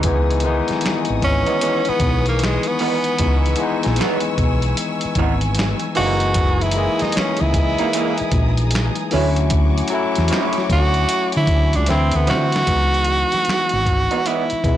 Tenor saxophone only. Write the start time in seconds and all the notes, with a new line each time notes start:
1.24 C#4
1.89 B3
2.29 A#3
2.44 G#3
2.67 B3
5.97 F#4
6.62 E4
7.02 D#4
7.16 C#4
7.41 E4
10.72 F#4
11.37 E4
11.75 D4
11.90 C4
12.15 B3
12.30 F#4
14.27 E4